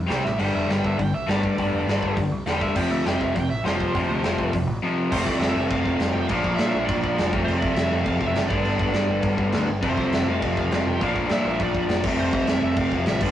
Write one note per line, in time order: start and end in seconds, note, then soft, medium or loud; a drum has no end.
0.09 0.20 C2 medium
0.09 0.24 C3 medium
0.09 0.24 G3 medium
0.09 0.24 C4 loud
0.09 0.24 G5 loud
0.09 snare loud
0.09 open hi-hat medium
0.24 0.35 A1 medium
0.24 0.39 E5 loud
0.24 snare medium
0.39 0.50 G1 medium
0.39 0.68 G2 medium
0.39 0.68 D3 medium
0.39 0.68 G3 medium
0.39 0.54 G5 loud
0.39 crash medium
0.55 0.65 F1 loud
0.55 0.69 E5 medium
0.69 0.80 G1 medium
0.69 0.98 G2 medium
0.69 0.98 D3 medium
0.69 0.98 G3 loud
0.69 0.84 G5 loud
0.69 snare loud
0.69 open hi-hat medium
0.84 0.94 G1 medium
0.84 0.99 E5 medium
0.84 kick medium
0.99 1.10 G1 medium
0.99 1.12 G2 medium
0.99 1.12 D3 medium
0.99 1.13 G5 loud
0.99 kick loud
0.99 open hi-hat medium
1.13 1.24 C2 medium
1.13 1.28 E5 loud
1.28 1.49 G1 medium
1.28 1.56 G2 medium
1.28 1.57 D3 medium
1.28 1.57 G3 medium
1.28 2.15 D5 loud
1.28 snare loud
1.28 open hi-hat medium
1.43 kick medium
1.57 1.69 G1 loud
1.57 1.86 G2 medium
1.57 1.86 D3 loud
1.57 1.87 G3 loud
1.57 kick medium
1.57 open hi-hat medium
1.72 1.83 F1 medium
1.87 1.98 G1 medium
1.87 2.16 G2 loud
1.87 2.16 D3 loud
1.87 2.16 G3 loud
1.87 snare loud
1.87 open hi-hat medium
2.02 2.13 G1 medium
2.02 kick medium
2.17 2.27 G1 loud
2.17 2.30 G2 medium
2.17 2.31 D3 medium
2.17 kick loud
2.17 open hi-hat medium
2.32 2.42 C2 medium
2.46 2.68 E1 loud
2.46 2.75 G2 medium
2.46 2.75 D3 medium
2.46 2.76 G3 loud
2.46 2.61 G5 loud
2.46 snare loud
2.46 open hi-hat medium
2.61 2.76 E5 medium
2.61 kick medium
2.75 2.86 F1 loud
2.75 3.04 F2 medium
2.75 3.05 C3 medium
2.75 3.05 F3 loud
2.75 2.91 G5 loud
2.75 kick loud
2.75 crash loud
2.91 3.01 D2 medium
2.91 3.05 E5 medium
3.06 3.16 F1 loud
3.06 3.34 F2 loud
3.06 3.34 C3 loud
3.06 3.35 F3 loud
3.06 3.21 G5 loud
3.06 snare loud
3.06 open hi-hat medium
3.21 3.31 F1 medium
3.21 3.35 E5 loud
3.21 kick medium
3.36 3.46 F1 medium
3.36 3.49 F2 medium
3.36 3.49 C3 medium
3.36 3.50 G5 loud
3.36 kick medium
3.36 open hi-hat medium
3.50 3.61 A1 medium
3.50 3.64 E5 loud
3.64 3.85 F1 medium
3.64 3.92 F2 medium
3.64 3.93 C3 loud
3.64 3.94 F3 loud
3.64 4.51 C5 loud
3.64 snare loud
3.64 open hi-hat medium
3.80 kick medium
3.94 4.05 F1 loud
3.94 4.22 F2 loud
3.94 4.23 C3 loud
3.94 4.23 F3 loud
3.94 kick loud
3.94 open hi-hat medium
4.09 4.20 D2 loud
4.23 4.34 F1 medium
4.23 4.52 F2 medium
4.23 4.53 C3 loud
4.23 4.53 F3 loud
4.23 snare loud
4.23 open hi-hat medium
4.38 4.49 F1 medium
4.38 kick loud
4.53 4.64 F1 loud
4.53 4.67 F2 medium
4.53 4.67 C3 medium
4.53 kick loud
4.53 open hi-hat medium
4.67 4.78 A1 medium
4.83 5.10 F2 medium
4.83 5.12 C3 medium
4.83 5.12 F3 loud
5.11 5.26 F1 loud
5.11 5.55 F2 medium
5.11 5.56 C3 loud
5.11 5.55 F3 loud
5.11 6.29 A3 loud
5.11 6.30 C4 loud
5.11 5.25 C5 medium
5.11 kick loud
5.11 crash loud
5.11 crash medium
5.26 5.39 C2 loud
5.26 5.41 D5 medium
5.26 kick loud
5.40 5.54 F1 loud
5.40 5.68 E5 loud
5.40 snare loud
5.40 crash medium
5.55 5.70 F1 loud
5.55 5.98 F2 medium
5.55 6.00 C3 medium
5.55 6.02 F3 medium
5.68 5.85 F1 loud
5.68 5.81 F5 loud
5.68 kick loud
5.68 crash medium
5.82 5.98 F1 medium
5.82 6.12 F5 loud
5.82 kick medium
5.98 6.13 F1 medium
5.98 6.28 F2 medium
5.98 6.28 C3 medium
5.98 6.30 F3 medium
5.98 snare loud
5.98 crash medium
6.12 6.29 F1 medium
6.12 6.27 G5 loud
6.27 6.44 A#1 loud
6.27 6.72 A#2 loud
6.27 6.73 F3 loud
6.27 6.55 F5 loud
6.27 kick loud
6.27 crash medium
6.31 6.71 A#3 loud
6.31 7.33 D4 loud
6.44 6.59 A#1 loud
6.44 kick medium
6.56 6.74 A#2 loud
6.56 6.88 E5 loud
6.56 snare loud
6.56 crash medium
6.72 6.88 A#1 loud
6.72 7.15 A#2 medium
6.72 7.17 F3 medium
6.72 7.16 A#3 medium
6.85 7.28 D5 loud
6.85 crash medium
6.89 7.17 A#1 medium
6.89 kick loud
7.04 kick medium
7.17 7.33 F1 loud
7.17 7.31 A#2 medium
7.17 7.32 F3 medium
7.17 7.33 A#3 medium
7.17 snare loud
7.17 crash medium
7.31 7.47 F1 medium
7.31 7.74 F2 loud
7.31 7.76 C3 loud
7.31 7.77 F3 loud
7.31 8.50 A3 loud
7.31 8.50 C4 loud
7.31 kick loud
7.45 7.62 F1 loud
7.45 7.57 C5 loud
7.45 crash medium
7.58 7.75 D5 medium
7.62 7.77 C2 medium
7.62 kick loud
7.72 8.19 F2 medium
7.72 8.01 E5 loud
7.76 7.91 F1 medium
7.76 8.21 C3 medium
7.76 8.19 F3 medium
7.76 snare loud
7.76 crash medium
7.92 8.06 F1 loud
8.01 8.16 F5 loud
8.06 8.20 F1 medium
8.06 kick loud
8.06 crash medium
8.17 8.35 F1 medium
8.17 8.49 F3 medium
8.17 8.26 F5 medium
8.17 kick medium
8.22 8.50 F2 medium
8.22 8.50 C3 medium
8.26 8.50 E5 loud
8.35 8.50 F#1 loud
8.35 snare loud
8.35 crash medium
8.47 8.65 G1 medium
8.47 8.91 G2 loud
8.47 9.67 B3 loud
8.47 9.67 D4 loud
8.47 8.62 D5 medium
8.47 kick loud
8.52 8.93 D3 medium
8.52 8.95 G3 loud
8.63 8.79 G1 loud
8.63 9.19 D5 medium
8.63 crash medium
8.79 8.93 G1 loud
8.79 kick medium
8.92 9.37 G2 medium
8.92 9.08 G2 loud
8.92 9.37 D3 medium
8.92 9.35 G3 medium
8.92 snare loud
8.92 crash medium
9.08 9.22 G1 medium
9.22 9.52 G1 loud
9.22 kick loud
9.22 crash medium
9.36 9.68 G2 medium
9.36 9.67 D3 medium
9.36 9.66 G3 medium
9.36 kick medium
9.52 9.68 D2 loud
9.52 snare loud
9.52 crash medium
9.68 9.82 G1 medium
9.82 9.97 F1 medium
9.82 10.26 F2 loud
9.82 10.26 C3 loud
9.82 10.27 F3 loud
9.82 11.00 A3 loud
9.82 11.00 C4 loud
9.82 10.13 C5 medium
9.82 kick loud
9.82 crash medium
9.97 10.12 C2 medium
9.97 kick medium
10.13 10.26 F1 loud
10.13 10.27 E5 loud
10.13 snare loud
10.13 crash medium
10.27 10.41 F1 loud
10.27 10.69 F2 medium
10.27 10.71 C3 medium
10.27 10.74 F3 medium
10.27 10.58 F5 loud
10.42 10.56 F1 medium
10.42 kick loud
10.42 crash medium
10.57 10.71 F1 medium
10.57 10.88 F5 loud
10.57 kick medium
10.71 10.85 F1 medium
10.71 10.99 F2 medium
10.71 11.00 C3 medium
10.71 11.03 F3 medium
10.71 snare loud
10.71 crash medium
10.86 11.00 F1 medium
10.86 11.01 G5 loud
11.01 11.15 A#1 loud
11.01 11.44 A#2 loud
11.01 11.45 F3 loud
11.01 11.44 A#3 loud
11.01 12.04 D4 loud
11.01 11.32 F5 loud
11.01 kick loud
11.01 crash medium
11.16 11.29 A#1 loud
11.16 kick medium
11.29 11.44 A#2 medium
11.29 11.62 E5 loud
11.29 snare loud
11.29 crash medium
11.45 11.59 A#1 loud
11.45 11.86 A#2 medium
11.45 11.88 F3 medium
11.45 11.88 A#3 medium
11.60 11.88 A#1 loud
11.60 12.02 D5 loud
11.60 kick loud
11.60 crash medium
11.75 kick medium
11.87 12.03 F1 loud
11.87 12.02 A#2 medium
11.87 12.03 F3 medium
11.87 12.04 A#3 medium
11.87 snare loud
11.87 crash medium
12.02 12.18 F1 medium
12.02 12.45 F2 loud
12.02 12.47 C3 medium
12.02 12.48 F3 loud
12.02 kick loud
12.02 crash loud
12.06 13.22 A3 loud
12.06 13.22 C4 loud
12.19 12.32 F1 loud
12.19 12.46 C5 medium
12.19 crash medium
12.33 12.47 C2 medium
12.33 kick loud
12.46 12.61 F1 medium
12.46 12.91 F2 medium
12.46 12.92 C3 medium
12.46 12.90 F3 medium
12.46 12.62 E5 loud
12.46 snare loud
12.46 crash medium
12.62 12.77 F1 loud
12.62 12.77 E5 loud
12.76 12.91 F1 medium
12.76 13.07 F5 loud
12.76 kick loud
12.76 crash medium
12.91 13.06 F1 medium
12.91 13.21 F2 medium
12.91 13.22 C3 medium
12.91 13.20 F3 medium
12.91 kick medium
13.06 13.21 A1 medium
13.06 13.23 E5 medium
13.06 snare loud
13.06 crash medium
13.20 13.31 G1 medium
13.20 13.31 G2 medium
13.20 13.31 D3 loud
13.20 13.31 G3 loud
13.20 13.31 B3 loud
13.20 13.31 D4 loud
13.20 13.31 D5 loud
13.20 kick loud
13.20 crash loud